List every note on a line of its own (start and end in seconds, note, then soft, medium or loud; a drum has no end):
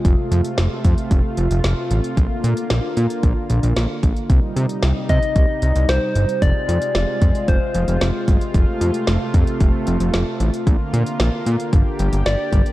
0.00 2.13 C3 medium
0.05 0.15 F1 loud
0.05 2.15 A3 medium
0.05 4.26 F4 medium
0.05 kick loud
0.05 closed hi-hat medium
0.31 0.42 F2 medium
0.31 closed hi-hat medium
0.45 closed hi-hat medium
0.58 0.68 F1 medium
0.58 snare loud
0.58 closed hi-hat medium
0.84 0.95 F2 medium
0.84 kick medium
0.84 closed hi-hat medium
0.98 closed hi-hat soft
1.11 1.21 F1 loud
1.11 kick medium
1.11 closed hi-hat medium
1.37 1.48 F1 loud
1.37 closed hi-hat medium
1.51 1.61 F1 medium
1.51 closed hi-hat medium
1.64 1.74 F1 loud
1.64 snare loud
1.64 closed hi-hat medium
1.91 2.01 A1 medium
1.91 closed hi-hat medium
2.04 closed hi-hat soft
2.17 2.27 A#1 loud
2.17 4.28 D3 medium
2.17 4.28 A#3 medium
2.17 kick medium
2.17 closed hi-hat medium
2.44 2.54 A#2 loud
2.44 closed hi-hat medium
2.57 closed hi-hat medium
2.70 2.80 A#1 medium
2.70 snare loud
2.70 closed hi-hat medium
2.97 3.07 A#2 loud
2.97 closed hi-hat medium
3.10 closed hi-hat soft
3.23 3.34 A#1 loud
3.23 kick loud
3.23 closed hi-hat medium
3.50 3.60 A#1 loud
3.50 closed hi-hat medium
3.63 3.73 A#1 loud
3.63 closed hi-hat medium
3.76 3.87 A#1 loud
3.76 snare loud
3.76 closed hi-hat medium
4.03 4.13 A#1 medium
4.03 kick medium
4.03 closed hi-hat medium
4.16 closed hi-hat soft
4.30 4.40 C2 loud
4.30 8.50 C3 medium
4.30 6.40 G3 medium
4.30 6.40 D#4 medium
4.30 kick medium
4.30 closed hi-hat medium
4.56 4.66 C3 medium
4.56 closed hi-hat medium
4.69 closed hi-hat medium
4.83 4.93 C2 loud
4.83 snare loud
4.83 closed hi-hat medium
5.09 5.19 C3 medium
5.09 5.91 D#5 loud
5.09 kick medium
5.09 closed hi-hat medium
5.23 closed hi-hat soft
5.36 5.46 C2 loud
5.36 kick loud
5.36 closed hi-hat medium
5.62 5.72 C2 medium
5.62 closed hi-hat medium
5.76 5.86 C2 medium
5.76 closed hi-hat medium
5.89 5.99 C2 loud
5.89 6.44 C5 loud
5.89 snare loud
5.89 closed hi-hat medium
6.15 6.26 G1 medium
6.15 closed hi-hat medium
6.29 closed hi-hat soft
6.42 6.52 F1 loud
6.42 8.52 G#3 medium
6.42 10.63 F4 medium
6.42 7.48 D5 loud
6.42 kick medium
6.42 closed hi-hat medium
6.69 6.79 F2 medium
6.69 closed hi-hat medium
6.82 closed hi-hat medium
6.95 7.05 F1 loud
6.95 snare loud
6.95 closed hi-hat medium
7.22 7.32 F2 loud
7.22 kick medium
7.22 closed hi-hat medium
7.35 closed hi-hat soft
7.48 7.58 F1 loud
7.48 8.24 C5 medium
7.48 kick medium
7.48 closed hi-hat medium
7.74 7.85 F1 loud
7.74 closed hi-hat medium
7.88 7.98 F1 medium
7.88 closed hi-hat medium
8.01 8.11 F1 medium
8.01 snare loud
8.01 closed hi-hat medium
8.28 8.38 G1 medium
8.28 kick medium
8.28 closed hi-hat medium
8.41 closed hi-hat soft
8.54 8.65 F1 loud
8.54 10.65 C3 medium
8.54 10.65 A3 medium
8.54 kick loud
8.54 closed hi-hat medium
8.81 8.91 F2 medium
8.81 closed hi-hat medium
8.94 closed hi-hat medium
9.07 9.18 F1 medium
9.07 snare loud
9.07 closed hi-hat medium
9.34 9.44 F2 medium
9.34 kick medium
9.34 closed hi-hat medium
9.47 closed hi-hat soft
9.60 9.71 F1 loud
9.60 kick loud
9.60 closed hi-hat medium
9.87 9.97 F1 loud
9.87 closed hi-hat medium
10.00 10.10 F1 loud
10.00 closed hi-hat medium
10.14 10.24 F1 loud
10.14 snare loud
10.14 closed hi-hat medium
10.40 10.50 A1 medium
10.40 closed hi-hat medium
10.54 closed hi-hat soft
10.67 10.77 A#1 loud
10.67 12.72 D3 medium
10.67 12.72 A#3 medium
10.67 11.72 F4 medium
10.67 kick loud
10.67 closed hi-hat medium
10.93 11.03 A#2 loud
10.93 closed hi-hat medium
11.06 closed hi-hat medium
11.20 11.30 A#1 loud
11.20 snare loud
11.20 closed hi-hat medium
11.46 11.57 A#2 medium
11.46 closed hi-hat medium
11.60 closed hi-hat soft
11.73 11.83 G1 loud
11.73 12.72 G4 medium
11.73 kick loud
11.73 closed hi-hat medium
11.99 12.10 G1 loud
11.99 closed hi-hat medium
12.13 12.23 G1 medium
12.13 closed hi-hat medium
12.26 12.36 G1 loud
12.26 12.72 D5 medium
12.26 snare loud
12.26 closed hi-hat medium
12.53 12.63 G1 loud
12.53 kick medium
12.53 closed hi-hat medium
12.66 closed hi-hat soft